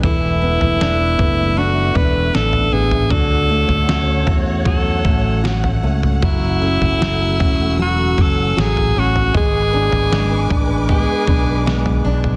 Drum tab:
SD |----o-------o---|----o-------o---|----o-------o---|----o-------o---|
FT |o--o--o------o-o|o--o--o-o----o-o|o--o--o------o-o|o--o--o------o-o|
BD |o-----o---o-----|o-----o-o-o-----|o-----o---o-----|o-----o-o-o-----|